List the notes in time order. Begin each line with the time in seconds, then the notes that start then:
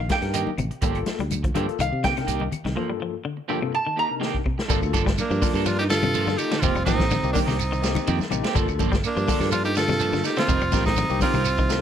Already playing: F5
0.00 D#3
0.09 A#3 D#4 G4 G5, kick, snare, closed hi-hat, high conga, shekere
0.22 G2 D4 D#4 A#4, muted clean electric guitar stroke, snare, closed hi-hat, claves
0.33 D#3 A#3 D#4 G4, closed hi-hat, shekere
0.47 high conga
0.58 A1 C3, muted clean electric guitar stroke, closed hi-hat, low conga, claves, shekere
0.71 muted clean electric guitar stroke, closed hi-hat
0.81 G1 F3 G3 A#3 D4 F4 G4 A4, kick, closed hi-hat, shekere
0.95 closed hi-hat, claves
1.06 muted clean electric guitar stroke, muted fingered electric bass stroke, snare, closed hi-hat, high conga, shekere
1.19 D2 G3, closed hi-hat, high conga
1.30 closed hi-hat, high conga, claves, shekere
1.43 F3, muted clean electric guitar stroke, kick, closed hi-hat
1.54 G2 D3 F3 A#3 D4 F4 G4 A4, closed hi-hat, low conga, shekere
1.68 muted clean electric guitar stroke, closed hi-hat
1.79 C2 D#3 F5, muted clean electric guitar stroke, closed hi-hat, claves, shekere
1.92 C3, muted clean electric guitar stroke
2.03 D3 A#3 D#4 G4 G5, kick, snare, closed hi-hat, high conga, shekere
2.16 C3 D4 D#4 A#4, muted clean electric guitar stroke, snare, closed hi-hat, claves
2.27 C2 A#3 D#4 G4, closed hi-hat, shekere
2.40 D#3, high conga
2.51 muted clean electric guitar stroke, muted fingered electric bass stroke, closed hi-hat, low conga, claves, shekere
2.64 C2 D#3, muted clean electric guitar stroke, snare, high conga
2.75 G2 F3 A#3 F4 A4, muted clean electric guitar stroke
2.90 G3
3.00 F3, muted clean electric guitar stroke
3.25 D3
3.37 muted clean electric guitar stroke
3.48 G2 D3 F3 A#3 D4 F4 G4 A4
3.61 C3, muted clean electric guitar stroke
3.72 A5, muted clean electric guitar stroke
3.85 D#3, muted clean electric guitar stroke
3.96 A#3 D#4 G4 A#5
4.09 C3 D4 D#4 A#4, muted clean electric guitar stroke
4.20 D#3 A#3 D#4 G4, snare
4.34 kick
4.45 C3, muted clean electric guitar stroke, kick
4.58 muted clean electric guitar stroke, snare
4.68 G1 F3 G3 A#3 D4 F4 A4, kick, ride bell, low conga, shekere
4.81 D2, muted clean electric guitar stroke, claves, shekere
4.93 G1 F3 A#3 D4 A4, kick, ride bell, high conga, shekere
5.06 G3, muted clean electric guitar stroke, kick, snare, shekere
5.18 A#3 D4, ride bell, high conga, claves, shekere
5.30 G2 F3, muted clean electric guitar stroke, shekere
5.41 D3 F3 A#3 D4 F4 A4 A#4, kick, open hi-hat, high conga, shekere
5.54 G2 F3 A#3 D4 A4, shekere
5.66 F3 D4 F4, muted clean electric guitar stroke, ride bell, claves, shekere
5.79 D#4 G4, muted clean electric guitar stroke, shekere
5.90 D3 F4 A4, muted clean electric guitar stroke, snare, ride bell, shekere
6.03 C3, high conga, low conga, claves, shekere
6.14 F3 A#3 D4 A4, ride bell, shekere
6.26 D3 A#3 F4 A4, muted clean electric guitar stroke, snare, high conga, shekere
6.37 D#4 G4, muted clean electric guitar stroke, ride bell, claves, shekere
6.52 D3 A#3 D4 A4, snare, ride bell, shekere
6.60 F1 D#3 A#3 C4 F4, kick, ride bell, low conga, shekere
6.64 C4 G4
6.75 F1 G3, muted clean electric guitar stroke, claves, shekere
6.85 A1 D#3 F3 A#3 C4 D#4 G4, kick, snare, ride bell, high conga, shekere
7.00 muted clean electric guitar stroke, kick, snare, high conga, shekere
7.11 D3, snare, ride bell, high conga, claves, shekere
7.23 C2 A#3 D#4 G4, muted clean electric guitar stroke, shekere
7.33 D3 D#3 A#3 C4 D4 G4, kick, open hi-hat, high conga, shekere
7.46 C2 C3 D#3 A#3 C4 D#4 G4, snare, low conga, shekere
7.58 muted clean electric guitar stroke, ride bell, claves, shekere
7.72 D#3, muted clean electric guitar stroke, shekere
7.82 A#3 D#4 G4, muted clean electric guitar stroke, snare, ride bell, shekere
7.95 ride bell, high conga, low conga, claves, shekere
8.07 F2 D#3 A#3 C4 G4, ride bell, shekere
8.19 muted fingered electric bass stroke, muted clean electric guitar stroke, snare, high conga, shekere
8.30 A1 C3 A#3 D#4 G4, muted clean electric guitar stroke, ride bell, high conga, claves, shekere
8.44 A#3 C4 G4, snare, ride bell, shekere
8.54 G1 F3 G3 A#3 D4 F4 A4, kick, ride bell, low conga, shekere
8.68 D2, muted clean electric guitar stroke, claves, shekere
8.79 G1 F3 A#3 D4 A4, kick, ride bell, high conga, shekere
8.92 G3, muted clean electric guitar stroke, kick, snare, high conga, shekere
9.04 A#3 D4, ride bell, claves, shekere
9.16 G2 F3, muted clean electric guitar stroke, shekere
9.27 D3 F3 A#3 D4 F4 A4, kick, open hi-hat, high conga, shekere
9.40 G2 F3 A#3 D4 A4, snare, low conga, shekere
9.51 F3 D4 F4, muted clean electric guitar stroke, ride bell, claves, shekere
9.64 D#4 G4, muted clean electric guitar stroke, shekere
9.75 D3 F4 A4, muted clean electric guitar stroke, snare, ride bell, shekere
9.88 C3, snare, high conga, low conga, claves, shekere
9.99 F3 A#3 D4 A4, ride bell, shekere
10.12 D3 A#3 F4 A4, muted clean electric guitar stroke, snare, high conga, shekere
10.23 D#4 G4, muted clean electric guitar stroke, snare, ride bell, claves, shekere
10.36 D3 A#3 C4 D4 F4 A4, snare, ride bell, shekere
10.48 F1 D#3 G3 C4 D#4 A#4, kick, ride bell, low conga, shekere
10.61 F1 G3, muted clean electric guitar stroke, claves, shekere
10.72 A1 F3 G3 A#3 C4 D#4 G4 A#4, kick, snare, ride bell, high conga, shekere
10.85 C4 D#4, muted clean electric guitar stroke, kick, snare, high conga, shekere
10.96 D3, snare, ride bell, high conga, claves, shekere
11.10 C2 A#3 D#4 G4, muted clean electric guitar stroke, shekere
11.20 D3 G3 C4 D#4 F4 A#4, kick, open hi-hat, high conga, shekere
11.33 C2 C3 G3 C4 D#4 A#4, low conga, shekere
11.45 muted clean electric guitar stroke, ride bell, claves, shekere
11.58 D#3, muted clean electric guitar stroke, kick, shekere
11.69 A#3 D#4 A4, muted clean electric guitar stroke, snare, ride bell, shekere